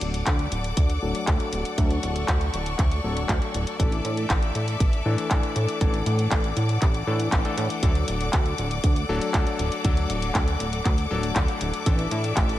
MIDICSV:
0, 0, Header, 1, 5, 480
1, 0, Start_track
1, 0, Key_signature, 2, "major"
1, 0, Tempo, 504202
1, 1694, Time_signature, 4, 2, 24, 8
1, 11984, End_track
2, 0, Start_track
2, 0, Title_t, "String section"
2, 0, Program_c, 0, 48
2, 0, Note_on_c, 0, 69, 81
2, 0, Note_on_c, 0, 74, 75
2, 0, Note_on_c, 0, 78, 71
2, 0, Note_on_c, 0, 86, 87
2, 1674, Note_off_c, 0, 86, 0
2, 1697, Note_on_c, 0, 85, 93
2, 3576, Note_off_c, 0, 78, 0
2, 3596, Note_off_c, 0, 85, 0
2, 3613, Note_on_c, 0, 76, 72
2, 3613, Note_on_c, 0, 86, 95
2, 5514, Note_off_c, 0, 76, 0
2, 5531, Note_on_c, 0, 78, 71
2, 7416, Note_off_c, 0, 69, 0
2, 7416, Note_off_c, 0, 74, 0
2, 7453, Note_on_c, 0, 69, 78
2, 7453, Note_on_c, 0, 74, 74
2, 11255, Note_off_c, 0, 74, 0
2, 11255, Note_off_c, 0, 78, 0
2, 11290, Note_on_c, 0, 74, 77
2, 11291, Note_on_c, 0, 76, 74
2, 11984, Note_off_c, 0, 69, 0
2, 11984, Note_off_c, 0, 74, 0
2, 11984, Note_off_c, 0, 76, 0
2, 11984, Note_off_c, 0, 86, 0
2, 11984, End_track
3, 0, Start_track
3, 0, Title_t, "Electric grand piano"
3, 0, Program_c, 1, 2
3, 0, Note_on_c, 1, 54, 68
3, 0, Note_on_c, 1, 57, 64
3, 0, Note_on_c, 1, 62, 62
3, 0, Note_on_c, 1, 69, 74
3, 945, Note_off_c, 1, 54, 0
3, 945, Note_off_c, 1, 57, 0
3, 945, Note_off_c, 1, 62, 0
3, 945, Note_off_c, 1, 69, 0
3, 974, Note_on_c, 1, 54, 96
3, 974, Note_on_c, 1, 57, 86
3, 975, Note_on_c, 1, 62, 85
3, 975, Note_on_c, 1, 69, 107
3, 1185, Note_off_c, 1, 54, 0
3, 1185, Note_off_c, 1, 57, 0
3, 1185, Note_off_c, 1, 62, 0
3, 1185, Note_off_c, 1, 69, 0
3, 1214, Note_on_c, 1, 54, 81
3, 1214, Note_on_c, 1, 57, 73
3, 1214, Note_on_c, 1, 62, 69
3, 1214, Note_on_c, 1, 69, 92
3, 1665, Note_off_c, 1, 54, 0
3, 1665, Note_off_c, 1, 57, 0
3, 1665, Note_off_c, 1, 62, 0
3, 1665, Note_off_c, 1, 69, 0
3, 1694, Note_on_c, 1, 54, 76
3, 1694, Note_on_c, 1, 57, 71
3, 1694, Note_on_c, 1, 62, 69
3, 1694, Note_on_c, 1, 69, 85
3, 2865, Note_off_c, 1, 54, 0
3, 2865, Note_off_c, 1, 57, 0
3, 2865, Note_off_c, 1, 62, 0
3, 2865, Note_off_c, 1, 69, 0
3, 2894, Note_on_c, 1, 54, 81
3, 2894, Note_on_c, 1, 57, 70
3, 2894, Note_on_c, 1, 62, 68
3, 2895, Note_on_c, 1, 69, 82
3, 3585, Note_off_c, 1, 54, 0
3, 3585, Note_off_c, 1, 57, 0
3, 3585, Note_off_c, 1, 62, 0
3, 3586, Note_off_c, 1, 69, 0
3, 3613, Note_on_c, 1, 52, 71
3, 3613, Note_on_c, 1, 57, 66
3, 3613, Note_on_c, 1, 62, 66
3, 3613, Note_on_c, 1, 69, 78
3, 4784, Note_off_c, 1, 52, 0
3, 4784, Note_off_c, 1, 62, 0
3, 4785, Note_off_c, 1, 57, 0
3, 4785, Note_off_c, 1, 69, 0
3, 4812, Note_on_c, 1, 52, 96
3, 4812, Note_on_c, 1, 57, 87
3, 4812, Note_on_c, 1, 62, 87
3, 4812, Note_on_c, 1, 69, 102
3, 5024, Note_off_c, 1, 52, 0
3, 5024, Note_off_c, 1, 57, 0
3, 5024, Note_off_c, 1, 62, 0
3, 5024, Note_off_c, 1, 69, 0
3, 5051, Note_on_c, 1, 52, 81
3, 5052, Note_on_c, 1, 57, 71
3, 5052, Note_on_c, 1, 62, 76
3, 5052, Note_on_c, 1, 69, 91
3, 5504, Note_off_c, 1, 52, 0
3, 5504, Note_off_c, 1, 57, 0
3, 5504, Note_off_c, 1, 62, 0
3, 5504, Note_off_c, 1, 69, 0
3, 5531, Note_on_c, 1, 52, 83
3, 5532, Note_on_c, 1, 57, 68
3, 5532, Note_on_c, 1, 62, 74
3, 5532, Note_on_c, 1, 69, 87
3, 6704, Note_off_c, 1, 52, 0
3, 6704, Note_off_c, 1, 57, 0
3, 6704, Note_off_c, 1, 62, 0
3, 6704, Note_off_c, 1, 69, 0
3, 6733, Note_on_c, 1, 52, 80
3, 6733, Note_on_c, 1, 57, 74
3, 6733, Note_on_c, 1, 62, 76
3, 6733, Note_on_c, 1, 69, 92
3, 7065, Note_off_c, 1, 52, 0
3, 7065, Note_off_c, 1, 57, 0
3, 7065, Note_off_c, 1, 62, 0
3, 7065, Note_off_c, 1, 69, 0
3, 7093, Note_on_c, 1, 52, 81
3, 7093, Note_on_c, 1, 57, 74
3, 7093, Note_on_c, 1, 62, 74
3, 7093, Note_on_c, 1, 69, 94
3, 7425, Note_off_c, 1, 52, 0
3, 7425, Note_off_c, 1, 57, 0
3, 7425, Note_off_c, 1, 62, 0
3, 7425, Note_off_c, 1, 69, 0
3, 7454, Note_on_c, 1, 54, 73
3, 7454, Note_on_c, 1, 57, 67
3, 7454, Note_on_c, 1, 62, 65
3, 7454, Note_on_c, 1, 69, 81
3, 8625, Note_off_c, 1, 54, 0
3, 8625, Note_off_c, 1, 57, 0
3, 8625, Note_off_c, 1, 62, 0
3, 8625, Note_off_c, 1, 69, 0
3, 8655, Note_on_c, 1, 54, 95
3, 8655, Note_on_c, 1, 57, 84
3, 8655, Note_on_c, 1, 62, 87
3, 8655, Note_on_c, 1, 69, 106
3, 8865, Note_off_c, 1, 54, 0
3, 8865, Note_off_c, 1, 57, 0
3, 8865, Note_off_c, 1, 62, 0
3, 8865, Note_off_c, 1, 69, 0
3, 8894, Note_on_c, 1, 62, 76
3, 8895, Note_on_c, 1, 54, 82
3, 8895, Note_on_c, 1, 57, 72
3, 8895, Note_on_c, 1, 69, 87
3, 9345, Note_off_c, 1, 54, 0
3, 9345, Note_off_c, 1, 57, 0
3, 9345, Note_off_c, 1, 62, 0
3, 9345, Note_off_c, 1, 69, 0
3, 9375, Note_on_c, 1, 54, 79
3, 9375, Note_on_c, 1, 57, 74
3, 9375, Note_on_c, 1, 62, 74
3, 9375, Note_on_c, 1, 69, 85
3, 10546, Note_off_c, 1, 54, 0
3, 10546, Note_off_c, 1, 57, 0
3, 10546, Note_off_c, 1, 62, 0
3, 10546, Note_off_c, 1, 69, 0
3, 10573, Note_on_c, 1, 54, 80
3, 10574, Note_on_c, 1, 57, 74
3, 10574, Note_on_c, 1, 62, 73
3, 10574, Note_on_c, 1, 69, 90
3, 11265, Note_off_c, 1, 54, 0
3, 11265, Note_off_c, 1, 57, 0
3, 11265, Note_off_c, 1, 62, 0
3, 11265, Note_off_c, 1, 69, 0
3, 11294, Note_on_c, 1, 52, 70
3, 11294, Note_on_c, 1, 57, 65
3, 11294, Note_on_c, 1, 62, 67
3, 11294, Note_on_c, 1, 69, 79
3, 11984, Note_off_c, 1, 52, 0
3, 11984, Note_off_c, 1, 57, 0
3, 11984, Note_off_c, 1, 62, 0
3, 11984, Note_off_c, 1, 69, 0
3, 11984, End_track
4, 0, Start_track
4, 0, Title_t, "Analog synth bass"
4, 0, Program_c, 2, 38
4, 13, Note_on_c, 2, 26, 96
4, 213, Note_off_c, 2, 26, 0
4, 254, Note_on_c, 2, 38, 93
4, 453, Note_off_c, 2, 38, 0
4, 493, Note_on_c, 2, 26, 77
4, 693, Note_off_c, 2, 26, 0
4, 734, Note_on_c, 2, 38, 94
4, 933, Note_off_c, 2, 38, 0
4, 973, Note_on_c, 2, 26, 86
4, 1073, Note_off_c, 2, 26, 0
4, 1214, Note_on_c, 2, 38, 75
4, 1314, Note_off_c, 2, 38, 0
4, 1455, Note_on_c, 2, 26, 84
4, 1554, Note_off_c, 2, 26, 0
4, 1694, Note_on_c, 2, 38, 101
4, 1893, Note_off_c, 2, 38, 0
4, 1934, Note_on_c, 2, 26, 96
4, 2133, Note_off_c, 2, 26, 0
4, 2174, Note_on_c, 2, 38, 90
4, 2373, Note_off_c, 2, 38, 0
4, 2414, Note_on_c, 2, 26, 80
4, 2613, Note_off_c, 2, 26, 0
4, 2654, Note_on_c, 2, 38, 83
4, 2853, Note_off_c, 2, 38, 0
4, 2893, Note_on_c, 2, 26, 89
4, 3093, Note_off_c, 2, 26, 0
4, 3134, Note_on_c, 2, 38, 91
4, 3234, Note_off_c, 2, 38, 0
4, 3374, Note_on_c, 2, 26, 101
4, 3473, Note_off_c, 2, 26, 0
4, 3614, Note_on_c, 2, 33, 103
4, 3813, Note_off_c, 2, 33, 0
4, 3853, Note_on_c, 2, 45, 99
4, 4053, Note_off_c, 2, 45, 0
4, 4093, Note_on_c, 2, 33, 92
4, 4293, Note_off_c, 2, 33, 0
4, 4333, Note_on_c, 2, 45, 81
4, 4533, Note_off_c, 2, 45, 0
4, 4573, Note_on_c, 2, 33, 92
4, 4773, Note_off_c, 2, 33, 0
4, 4814, Note_on_c, 2, 45, 89
4, 4913, Note_off_c, 2, 45, 0
4, 5053, Note_on_c, 2, 33, 79
4, 5153, Note_off_c, 2, 33, 0
4, 5293, Note_on_c, 2, 45, 88
4, 5393, Note_off_c, 2, 45, 0
4, 5533, Note_on_c, 2, 33, 108
4, 5733, Note_off_c, 2, 33, 0
4, 5771, Note_on_c, 2, 45, 92
4, 5972, Note_off_c, 2, 45, 0
4, 6013, Note_on_c, 2, 33, 91
4, 6213, Note_off_c, 2, 33, 0
4, 6252, Note_on_c, 2, 45, 82
4, 6452, Note_off_c, 2, 45, 0
4, 6493, Note_on_c, 2, 33, 84
4, 6693, Note_off_c, 2, 33, 0
4, 6732, Note_on_c, 2, 45, 83
4, 6932, Note_off_c, 2, 45, 0
4, 6973, Note_on_c, 2, 33, 93
4, 7073, Note_off_c, 2, 33, 0
4, 7213, Note_on_c, 2, 45, 98
4, 7313, Note_off_c, 2, 45, 0
4, 7453, Note_on_c, 2, 38, 100
4, 7653, Note_off_c, 2, 38, 0
4, 7693, Note_on_c, 2, 26, 93
4, 7893, Note_off_c, 2, 26, 0
4, 7933, Note_on_c, 2, 38, 91
4, 8133, Note_off_c, 2, 38, 0
4, 8173, Note_on_c, 2, 26, 82
4, 8373, Note_off_c, 2, 26, 0
4, 8413, Note_on_c, 2, 38, 90
4, 8613, Note_off_c, 2, 38, 0
4, 8652, Note_on_c, 2, 26, 90
4, 8752, Note_off_c, 2, 26, 0
4, 8893, Note_on_c, 2, 38, 82
4, 8993, Note_off_c, 2, 38, 0
4, 9133, Note_on_c, 2, 26, 85
4, 9233, Note_off_c, 2, 26, 0
4, 9374, Note_on_c, 2, 38, 99
4, 9573, Note_off_c, 2, 38, 0
4, 9612, Note_on_c, 2, 26, 100
4, 9812, Note_off_c, 2, 26, 0
4, 9853, Note_on_c, 2, 38, 90
4, 10053, Note_off_c, 2, 38, 0
4, 10092, Note_on_c, 2, 26, 81
4, 10292, Note_off_c, 2, 26, 0
4, 10333, Note_on_c, 2, 38, 88
4, 10533, Note_off_c, 2, 38, 0
4, 10572, Note_on_c, 2, 26, 84
4, 10773, Note_off_c, 2, 26, 0
4, 10814, Note_on_c, 2, 38, 92
4, 10913, Note_off_c, 2, 38, 0
4, 11051, Note_on_c, 2, 26, 98
4, 11152, Note_off_c, 2, 26, 0
4, 11294, Note_on_c, 2, 33, 105
4, 11493, Note_off_c, 2, 33, 0
4, 11533, Note_on_c, 2, 45, 98
4, 11733, Note_off_c, 2, 45, 0
4, 11773, Note_on_c, 2, 33, 91
4, 11973, Note_off_c, 2, 33, 0
4, 11984, End_track
5, 0, Start_track
5, 0, Title_t, "Drums"
5, 13, Note_on_c, 9, 42, 69
5, 108, Note_off_c, 9, 42, 0
5, 134, Note_on_c, 9, 42, 41
5, 229, Note_off_c, 9, 42, 0
5, 252, Note_on_c, 9, 39, 112
5, 252, Note_on_c, 9, 42, 94
5, 254, Note_on_c, 9, 36, 105
5, 348, Note_off_c, 9, 39, 0
5, 348, Note_off_c, 9, 42, 0
5, 349, Note_off_c, 9, 36, 0
5, 373, Note_on_c, 9, 42, 37
5, 468, Note_off_c, 9, 42, 0
5, 493, Note_on_c, 9, 42, 63
5, 588, Note_off_c, 9, 42, 0
5, 613, Note_on_c, 9, 42, 39
5, 708, Note_off_c, 9, 42, 0
5, 733, Note_on_c, 9, 42, 97
5, 734, Note_on_c, 9, 36, 112
5, 828, Note_off_c, 9, 42, 0
5, 829, Note_off_c, 9, 36, 0
5, 853, Note_on_c, 9, 42, 39
5, 948, Note_off_c, 9, 42, 0
5, 1093, Note_on_c, 9, 42, 40
5, 1188, Note_off_c, 9, 42, 0
5, 1212, Note_on_c, 9, 39, 108
5, 1212, Note_on_c, 9, 42, 88
5, 1214, Note_on_c, 9, 36, 121
5, 1308, Note_off_c, 9, 39, 0
5, 1308, Note_off_c, 9, 42, 0
5, 1310, Note_off_c, 9, 36, 0
5, 1333, Note_on_c, 9, 42, 42
5, 1428, Note_off_c, 9, 42, 0
5, 1453, Note_on_c, 9, 42, 68
5, 1548, Note_off_c, 9, 42, 0
5, 1573, Note_on_c, 9, 42, 39
5, 1669, Note_off_c, 9, 42, 0
5, 1694, Note_on_c, 9, 36, 120
5, 1694, Note_on_c, 9, 42, 89
5, 1789, Note_off_c, 9, 42, 0
5, 1790, Note_off_c, 9, 36, 0
5, 1814, Note_on_c, 9, 42, 40
5, 1909, Note_off_c, 9, 42, 0
5, 1934, Note_on_c, 9, 42, 61
5, 2029, Note_off_c, 9, 42, 0
5, 2054, Note_on_c, 9, 42, 37
5, 2149, Note_off_c, 9, 42, 0
5, 2174, Note_on_c, 9, 36, 112
5, 2174, Note_on_c, 9, 39, 126
5, 2174, Note_on_c, 9, 42, 95
5, 2269, Note_off_c, 9, 39, 0
5, 2269, Note_off_c, 9, 42, 0
5, 2270, Note_off_c, 9, 36, 0
5, 2294, Note_on_c, 9, 42, 37
5, 2389, Note_off_c, 9, 42, 0
5, 2415, Note_on_c, 9, 42, 64
5, 2510, Note_off_c, 9, 42, 0
5, 2534, Note_on_c, 9, 42, 39
5, 2629, Note_off_c, 9, 42, 0
5, 2654, Note_on_c, 9, 36, 117
5, 2654, Note_on_c, 9, 39, 61
5, 2654, Note_on_c, 9, 42, 87
5, 2750, Note_off_c, 9, 36, 0
5, 2750, Note_off_c, 9, 39, 0
5, 2750, Note_off_c, 9, 42, 0
5, 2775, Note_on_c, 9, 42, 40
5, 2870, Note_off_c, 9, 42, 0
5, 3015, Note_on_c, 9, 42, 40
5, 3110, Note_off_c, 9, 42, 0
5, 3134, Note_on_c, 9, 36, 118
5, 3134, Note_on_c, 9, 39, 117
5, 3134, Note_on_c, 9, 42, 85
5, 3229, Note_off_c, 9, 36, 0
5, 3229, Note_off_c, 9, 39, 0
5, 3229, Note_off_c, 9, 42, 0
5, 3254, Note_on_c, 9, 42, 40
5, 3350, Note_off_c, 9, 42, 0
5, 3374, Note_on_c, 9, 42, 63
5, 3469, Note_off_c, 9, 42, 0
5, 3494, Note_on_c, 9, 42, 40
5, 3589, Note_off_c, 9, 42, 0
5, 3614, Note_on_c, 9, 36, 120
5, 3615, Note_on_c, 9, 42, 89
5, 3709, Note_off_c, 9, 36, 0
5, 3710, Note_off_c, 9, 42, 0
5, 3734, Note_on_c, 9, 42, 39
5, 3830, Note_off_c, 9, 42, 0
5, 3854, Note_on_c, 9, 42, 63
5, 3949, Note_off_c, 9, 42, 0
5, 3973, Note_on_c, 9, 42, 39
5, 4068, Note_off_c, 9, 42, 0
5, 4093, Note_on_c, 9, 39, 125
5, 4093, Note_on_c, 9, 42, 88
5, 4094, Note_on_c, 9, 36, 114
5, 4188, Note_off_c, 9, 39, 0
5, 4188, Note_off_c, 9, 42, 0
5, 4189, Note_off_c, 9, 36, 0
5, 4213, Note_on_c, 9, 42, 36
5, 4308, Note_off_c, 9, 42, 0
5, 4333, Note_on_c, 9, 42, 61
5, 4428, Note_off_c, 9, 42, 0
5, 4453, Note_on_c, 9, 42, 36
5, 4549, Note_off_c, 9, 42, 0
5, 4573, Note_on_c, 9, 36, 122
5, 4573, Note_on_c, 9, 42, 88
5, 4668, Note_off_c, 9, 36, 0
5, 4668, Note_off_c, 9, 42, 0
5, 4694, Note_on_c, 9, 42, 36
5, 4789, Note_off_c, 9, 42, 0
5, 4934, Note_on_c, 9, 42, 40
5, 5029, Note_off_c, 9, 42, 0
5, 5052, Note_on_c, 9, 39, 117
5, 5052, Note_on_c, 9, 42, 85
5, 5053, Note_on_c, 9, 36, 119
5, 5147, Note_off_c, 9, 39, 0
5, 5147, Note_off_c, 9, 42, 0
5, 5148, Note_off_c, 9, 36, 0
5, 5173, Note_on_c, 9, 42, 39
5, 5268, Note_off_c, 9, 42, 0
5, 5292, Note_on_c, 9, 42, 64
5, 5387, Note_off_c, 9, 42, 0
5, 5412, Note_on_c, 9, 42, 38
5, 5507, Note_off_c, 9, 42, 0
5, 5532, Note_on_c, 9, 36, 117
5, 5532, Note_on_c, 9, 42, 81
5, 5627, Note_off_c, 9, 42, 0
5, 5628, Note_off_c, 9, 36, 0
5, 5652, Note_on_c, 9, 42, 36
5, 5748, Note_off_c, 9, 42, 0
5, 5772, Note_on_c, 9, 42, 62
5, 5867, Note_off_c, 9, 42, 0
5, 5891, Note_on_c, 9, 42, 37
5, 5987, Note_off_c, 9, 42, 0
5, 6011, Note_on_c, 9, 39, 124
5, 6011, Note_on_c, 9, 42, 85
5, 6012, Note_on_c, 9, 36, 110
5, 6107, Note_off_c, 9, 39, 0
5, 6107, Note_off_c, 9, 42, 0
5, 6108, Note_off_c, 9, 36, 0
5, 6131, Note_on_c, 9, 42, 36
5, 6226, Note_off_c, 9, 42, 0
5, 6251, Note_on_c, 9, 42, 59
5, 6347, Note_off_c, 9, 42, 0
5, 6370, Note_on_c, 9, 42, 38
5, 6466, Note_off_c, 9, 42, 0
5, 6490, Note_on_c, 9, 39, 60
5, 6490, Note_on_c, 9, 42, 82
5, 6493, Note_on_c, 9, 36, 111
5, 6585, Note_off_c, 9, 39, 0
5, 6585, Note_off_c, 9, 42, 0
5, 6588, Note_off_c, 9, 36, 0
5, 6611, Note_on_c, 9, 42, 36
5, 6706, Note_off_c, 9, 42, 0
5, 6850, Note_on_c, 9, 42, 37
5, 6946, Note_off_c, 9, 42, 0
5, 6971, Note_on_c, 9, 39, 114
5, 6971, Note_on_c, 9, 42, 79
5, 6973, Note_on_c, 9, 36, 123
5, 7066, Note_off_c, 9, 39, 0
5, 7066, Note_off_c, 9, 42, 0
5, 7068, Note_off_c, 9, 36, 0
5, 7092, Note_on_c, 9, 42, 39
5, 7187, Note_off_c, 9, 42, 0
5, 7212, Note_on_c, 9, 42, 61
5, 7307, Note_off_c, 9, 42, 0
5, 7332, Note_on_c, 9, 42, 38
5, 7427, Note_off_c, 9, 42, 0
5, 7452, Note_on_c, 9, 42, 86
5, 7453, Note_on_c, 9, 36, 114
5, 7547, Note_off_c, 9, 42, 0
5, 7548, Note_off_c, 9, 36, 0
5, 7571, Note_on_c, 9, 42, 37
5, 7667, Note_off_c, 9, 42, 0
5, 7691, Note_on_c, 9, 42, 64
5, 7786, Note_off_c, 9, 42, 0
5, 7812, Note_on_c, 9, 42, 37
5, 7907, Note_off_c, 9, 42, 0
5, 7931, Note_on_c, 9, 39, 114
5, 7931, Note_on_c, 9, 42, 85
5, 7933, Note_on_c, 9, 36, 113
5, 8026, Note_off_c, 9, 39, 0
5, 8026, Note_off_c, 9, 42, 0
5, 8028, Note_off_c, 9, 36, 0
5, 8051, Note_on_c, 9, 42, 35
5, 8146, Note_off_c, 9, 42, 0
5, 8171, Note_on_c, 9, 42, 60
5, 8266, Note_off_c, 9, 42, 0
5, 8291, Note_on_c, 9, 42, 36
5, 8387, Note_off_c, 9, 42, 0
5, 8412, Note_on_c, 9, 42, 86
5, 8413, Note_on_c, 9, 36, 113
5, 8508, Note_off_c, 9, 42, 0
5, 8509, Note_off_c, 9, 36, 0
5, 8532, Note_on_c, 9, 42, 36
5, 8627, Note_off_c, 9, 42, 0
5, 8773, Note_on_c, 9, 42, 38
5, 8868, Note_off_c, 9, 42, 0
5, 8892, Note_on_c, 9, 39, 107
5, 8892, Note_on_c, 9, 42, 81
5, 8893, Note_on_c, 9, 36, 116
5, 8987, Note_off_c, 9, 39, 0
5, 8987, Note_off_c, 9, 42, 0
5, 8989, Note_off_c, 9, 36, 0
5, 9012, Note_on_c, 9, 42, 37
5, 9108, Note_off_c, 9, 42, 0
5, 9133, Note_on_c, 9, 42, 58
5, 9228, Note_off_c, 9, 42, 0
5, 9252, Note_on_c, 9, 42, 36
5, 9348, Note_off_c, 9, 42, 0
5, 9373, Note_on_c, 9, 42, 90
5, 9374, Note_on_c, 9, 36, 118
5, 9468, Note_off_c, 9, 42, 0
5, 9469, Note_off_c, 9, 36, 0
5, 9493, Note_on_c, 9, 42, 38
5, 9588, Note_off_c, 9, 42, 0
5, 9613, Note_on_c, 9, 42, 63
5, 9709, Note_off_c, 9, 42, 0
5, 9733, Note_on_c, 9, 42, 40
5, 9828, Note_off_c, 9, 42, 0
5, 9852, Note_on_c, 9, 39, 120
5, 9852, Note_on_c, 9, 42, 90
5, 9854, Note_on_c, 9, 36, 108
5, 9948, Note_off_c, 9, 39, 0
5, 9948, Note_off_c, 9, 42, 0
5, 9949, Note_off_c, 9, 36, 0
5, 9973, Note_on_c, 9, 42, 38
5, 10069, Note_off_c, 9, 42, 0
5, 10093, Note_on_c, 9, 42, 64
5, 10188, Note_off_c, 9, 42, 0
5, 10214, Note_on_c, 9, 42, 37
5, 10309, Note_off_c, 9, 42, 0
5, 10334, Note_on_c, 9, 36, 109
5, 10334, Note_on_c, 9, 39, 55
5, 10334, Note_on_c, 9, 42, 84
5, 10429, Note_off_c, 9, 36, 0
5, 10429, Note_off_c, 9, 39, 0
5, 10429, Note_off_c, 9, 42, 0
5, 10453, Note_on_c, 9, 42, 38
5, 10548, Note_off_c, 9, 42, 0
5, 10693, Note_on_c, 9, 42, 39
5, 10789, Note_off_c, 9, 42, 0
5, 10813, Note_on_c, 9, 39, 112
5, 10813, Note_on_c, 9, 42, 86
5, 10814, Note_on_c, 9, 36, 109
5, 10908, Note_off_c, 9, 39, 0
5, 10908, Note_off_c, 9, 42, 0
5, 10909, Note_off_c, 9, 36, 0
5, 10932, Note_on_c, 9, 42, 38
5, 11027, Note_off_c, 9, 42, 0
5, 11052, Note_on_c, 9, 42, 60
5, 11147, Note_off_c, 9, 42, 0
5, 11172, Note_on_c, 9, 42, 40
5, 11268, Note_off_c, 9, 42, 0
5, 11293, Note_on_c, 9, 42, 89
5, 11294, Note_on_c, 9, 36, 105
5, 11388, Note_off_c, 9, 42, 0
5, 11389, Note_off_c, 9, 36, 0
5, 11412, Note_on_c, 9, 42, 40
5, 11507, Note_off_c, 9, 42, 0
5, 11532, Note_on_c, 9, 42, 67
5, 11628, Note_off_c, 9, 42, 0
5, 11653, Note_on_c, 9, 42, 40
5, 11748, Note_off_c, 9, 42, 0
5, 11773, Note_on_c, 9, 36, 102
5, 11773, Note_on_c, 9, 39, 115
5, 11773, Note_on_c, 9, 42, 99
5, 11869, Note_off_c, 9, 36, 0
5, 11869, Note_off_c, 9, 39, 0
5, 11869, Note_off_c, 9, 42, 0
5, 11893, Note_on_c, 9, 42, 39
5, 11984, Note_off_c, 9, 42, 0
5, 11984, End_track
0, 0, End_of_file